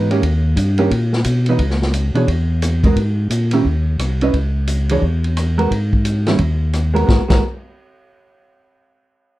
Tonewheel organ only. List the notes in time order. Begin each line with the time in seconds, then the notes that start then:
Already playing: G#2
0.22 D#2
0.56 G2
0.90 A#2
1.24 B2
1.59 C#2
2.14 B2
2.28 E2
2.96 G#2
3.30 A#2
3.64 D#2
3.98 C2
4.33 C#2
5.02 E2
5.71 G#2
6.39 D#2
7.08 G#1
7.30 G#1